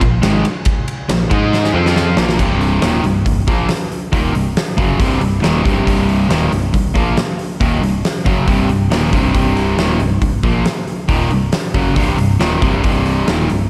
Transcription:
0.00 A#1 A#2 F3, kick, ride
0.22 G#1 G#2 D#3 G#3, snare, ride
0.45 ride
0.65 kick, ride
0.88 ride
1.09 A#1 A#2 F3, snare, ride
1.21 snare
1.30 G#2 G#3 D#4 G#4, kick, ride
1.53 snare
1.64 snare
1.74 F2 F3 C4 F4
1.86 snare
1.96 snare
2.16 A#1 A#2 F3 A#3, snare
2.29 snare
2.39 C1 C2 G2 C3, kick, crash
2.61 open hi-hat
2.81 D#1 D#2 A#2 D#3, snare, open hi-hat
3.03 C1 C2 G2, open hi-hat
3.26 C1 C2 G2, kick, open hi-hat
3.47 A#1 A#2 F3 A#3, kick, open hi-hat
3.69 snare, open hi-hat
3.92 open hi-hat
4.12 D#1 D#2 A#2 D#3, kick, open hi-hat
4.33 C1 C2 G2, open hi-hat
4.57 snare, open hi-hat
4.77 F#1 F#2 C#3 F#3, kick, open hi-hat
4.98 C1 C2 G2 C3, kick, open hi-hat
5.21 C1 C2 G2, open hi-hat
5.42 D#1 D#2 A#2 D#3, snare, open hi-hat
5.63 C1 C2 G2 C3, kick, open hi-hat
5.84 C1 C2 G2 C3, kick
5.88 open hi-hat
6.09 open hi-hat
6.29 D#1 D#2 A#2 D#3, snare, open hi-hat
6.51 C1 C2 G2, open hi-hat
6.73 C1 C2 G2, kick, open hi-hat
6.94 A#1 A#2 F3 A#3, kick, open hi-hat
7.17 snare, open hi-hat
7.39 open hi-hat
7.60 D#1 D#2 A#2 D#3, kick, open hi-hat
7.81 C1 C2 G2, open hi-hat
8.05 snare, open hi-hat
8.25 F#1 F#2 C#3 F#3, kick, open hi-hat
8.47 C1 C2 G2 C3, kick, open hi-hat
8.67 C1 C2 G2, open hi-hat
8.90 D#1 D#2 A#2 D#3, snare, open hi-hat
9.12 C1 C2 G2 C3, kick, open hi-hat
9.34 C1 C2 G2 C3, kick, open hi-hat
9.57 open hi-hat
9.77 D#1 D#2 A#2 D#3, snare, open hi-hat
10.00 C1 C2 G2, open hi-hat
10.21 C1 C2 G2, kick, open hi-hat
10.43 A#1 A#2 F3 A#3, kick, open hi-hat
10.66 snare, open hi-hat
10.87 open hi-hat
11.08 D#1 D#2 A#2 D#3, kick, open hi-hat
11.30 C1 C2 G2, open hi-hat
11.52 snare, open hi-hat
11.74 F#1 F#2 C#3 F#3, kick, open hi-hat
11.95 C1 C2 G2 C3, kick, open hi-hat
12.17 C1 C2 G2, open hi-hat
12.39 D#1 D#2 A#2 D#3, snare, open hi-hat
12.60 C1 C2 G2 C3, kick, open hi-hat
12.83 C1 C2 G2 C3, kick, open hi-hat
13.06 open hi-hat
13.27 D#1 D#2 A#2 D#3, snare, open hi-hat
13.49 C1 C2 G2, open hi-hat

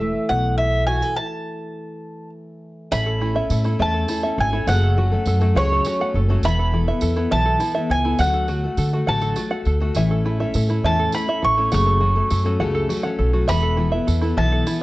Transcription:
Already playing: E1 E3 A4 E5
0.01 A3
0.29 B1 B2 F#5
0.58 E4 E5
0.86 F#4 G#5
1.02 A4
1.16 A5
2.91 A1 A3 C#4 E4 A4 E5 B5, tambourine
3.06 A4
3.20 A3 C#4 E4 A4
3.34 C#4 E4 A4 E5
3.50 A2 A4, tambourine
3.64 C#4 E4 A4, tambourine
3.79 E2 A3 C#4 E4 A4 E5 A5
3.94 A4
4.08 A3 C#4 E4 A4, tambourine
4.23 C#4 E4 A4 E5
4.38 G#1 A4 G#5
4.52 C#4 E4 A4
4.67 F#1 F#2 C#3 F#3 A3 C#4 A4 F#5, tambourine
4.83 A4
4.97 F#3 A3 C#4 F#4 A4
5.11 F#3 A3 C#4 A4
5.26 F#2 A4, tambourine
5.40 F#3 A3 C#4 F#4 A4, tambourine
5.55 C#2 F#2 C#3 F#3 A3 C#4 A4 C#5 F#5
5.72 A4
5.84 F#3 A3 C#4 F#4 A4, tambourine
6.00 F#3 A3 C#4 A4 F#5
6.14 F#1 A4
6.29 F#3 A3 C#4 F#4 A4
6.43 E1 E3 B3 E4 A4 E5 B5, tambourine
6.59 A4
6.72 E3 B3 E4 A4
6.87 B3 E4 A4 E5
7.01 E2 A4, tambourine
7.16 B3 E4 A4, tambourine
7.31 B1 E3 B3 E4 A4 E5 A5
7.46 A4
7.60 E3 B3 E4 A4, tambourine
7.75 B3 E4 A4 E5
7.90 C#2 A4 G#5
8.04 B3 E4 A4
8.18 D2 D3 F#3 A3 F#4 A4 F#5, tambourine
8.34 A4
8.48 F#3 A3 F#4 A4, tambourine
8.64 A3 F#4 A4
8.77 D3 A4, tambourine
8.93 A3 F#4 A4
9.07 A1 D3 F#3 A3 F#4 A4 F#5 A5
9.22 A4, tambourine
9.36 F#3 A3 F#4 A4, tambourine
9.51 A3 F#4 A4 F#5
9.65 D2 A4, tambourine
9.80 A3 F#4 A4
9.95 A1 A2 E3 A3 C#4 E4 A4 E5, tambourine
10.11 A4
10.25 A3 C#4 E4 A4
10.40 A3 C#4 E4 A4 E5
10.54 A2 A4, tambourine
10.69 A3 C#4 E4 A4, tambourine
10.84 E2 A2 E3 A3 C#4 E4 A4 E5 A5
10.99 A4
11.12 A3 C#4 E4 A4 B5, tambourine
11.28 A3 C#4 E4 A4 E5
11.42 A1 A4 C#6
11.57 A3 C#4 E4 A4
11.72 F#1 F#2 C#3 F#3 A3 C#4 A4 F#5 C#6, tambourine
11.86 A4
12.01 F#3 A3 C#4 F#4 A4
12.15 F#3 A3 C#4 A4
12.30 F#2 A4, tambourine
12.45 F#3 A3 C#4 F#4 A4
12.60 C#2 F#2 C#3 F#3 A3 C#4 A4 F#5
12.75 A4
12.89 F#3 A3 C#4 F#4 A4, tambourine
13.03 F#3 A3 C#4 A4 F#5
13.19 B1 A4
13.33 F#3 A3 C#4 F#4 A4
13.48 E1 E3 B3 E4 A4 E5 B5, tambourine
13.62 A4
13.77 E3 B3 E4 A4
13.92 B3 E4 A4 E5
14.07 E2 A4, tambourine
14.22 B3 E4 A4, tambourine
14.37 B1 E3 B3 E4 A4 E5 A5
14.52 A4
14.66 E3 B3 E4 A4, tambourine

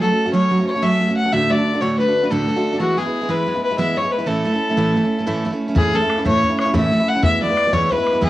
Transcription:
0.01 F#3 A3 C#4 F#4 A4
0.10 A3 C#4 F#4
0.26 A3 C#4 F#4
0.33 F#3 A3 C#4 F#4 C#5
0.51 F#3 A3 C#4 F#4
0.59 A3 C#4 F#4
0.67 C#5
0.75 A3 C#4 F#4
0.82 F#3 A3 C#4 F#4 E5
0.99 F#3 A3 C#4 F#4
1.08 A3 C#4 F#4
1.16 F#5
1.24 A3 C#4 F#4
1.32 D2 A2 D3 A3 D4 F#4 E5
1.50 D3 A3 D4 F#4 D5
1.57 D3 A3 D4 F#4
1.73 D3 A3 D4 F#4
1.81 D2 A2 D3 A3 D4 F#4 C#5
1.99 D3 A3 D4 F#4 B4
2.08 D3 A3 D4 F#4
2.23 D3 A3 D4 F#4 B4
2.30 D2 A2 D3 A3 D4 F#4 A4
2.48 D3 A3 D4 F#4
2.56 D3 A3 D4 F#4
2.72 D3 A3 D4 F#4
2.79 E3 G#3 B3 E4 F#4
2.97 E3 G#3 B3 E4 G#4
3.05 G#3 B3 E4
3.21 G#3 B3 E4
3.29 E3 G#3 B3 E4 B4
3.46 E3 G#3 B3 E4
3.55 G#3 B3 E4
3.64 B4
3.70 G#3 B3 E4
3.78 E3 G#3 B3 E4 E5
3.96 E3 G#3 B3 E4 C#5
4.03 G#3 B3 E4
4.11 B4
4.18 G#3 B3 E4
4.26 A2 E3 A3 C#4 E4 A4
4.45 E3 A3 C#4 E4
4.53 A3 C#4 E4
4.69 A3 C#4 E4
4.77 A2 E3 A3 C#4 E4
4.95 E3 A3 C#4 E4
5.03 A3 C#4 E4
5.18 A3 C#4 E4
5.26 A2 E3 A3 C#4 E4
5.45 E3 A3 C#4 E4
5.52 A3 C#4 E4
5.68 A3 C#4 E4
5.75 A2 E3 A3 C#4 E4 G#4, bodhran
5.93 E3 A3 C#4 E4 A4
6.02 A3 C#4 E4
6.10 bodhran
6.17 A3 C#4 E4
6.25 A2 E3 A3 C#4 E4 C#5, bodhran
6.43 E3 A3 C#4 E4, bodhran
6.50 A3 C#4 E4
6.59 C#5, bodhran
6.65 A3 C#4 E4
6.74 A2 E3 A3 C#4 E4 E5, bodhran
6.92 E3 A3 C#4 E4
7.00 A3 C#4 E4
7.09 F#5
7.15 A3 C#4 E4
7.23 E3 G#3 B3 E4 E5, bodhran
7.41 E3 G#3 B3 E4 D5
7.50 G#3 B3 E4
7.57 bodhran
7.65 G#3 B3 E4
7.73 E3 G#3 B3 E4 C#5, bodhran
7.91 E3 G#3 B3 E4 B4, bodhran
7.98 G#3 B3 E4
8.07 bodhran
8.13 G#3 B3 E4
8.21 E3 G#3 B3 E4 G#4, bodhran

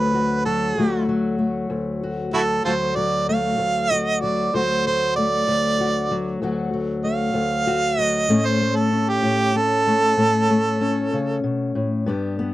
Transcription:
Already playing: D2 F#3 A3 F#4
0.00 B4
0.14 F#4
0.45 F#3 A4
0.77 D2 F#3 A3 F#4
1.09 F#3
1.39 A3
1.70 D2
2.03 F#4
2.34 F#3 E4 F#4 A4
2.65 D2 F#3 A3 F4 F#4 A4 C5
2.95 F#3 D5
3.29 A3 F5
3.58 D2
3.91 F#4 D#5
4.21 F#3 D5
4.54 D2 F#3 A3 F#4 C5
4.87 F#3 C5
5.16 A3 D5
5.48 D2
5.80 F#4
6.11 F#3
6.42 D2 F#3 A3 F#4
6.73 F#3
7.04 A3 F5
7.34 D2
7.67 F#4
7.99 F#3 D#5
8.29 A2 A3 C#4
8.46 C5
8.61 A3
8.76 A4
8.93 C#4
9.09 G4
9.22 A2
9.56 C#4 A4
9.87 A3
10.17 A2 A3 C#4
10.50 A3
10.81 C#4
11.13 C#3
11.44 B2
11.75 A2
12.06 G2 B3 D4 G4
12.39 B3

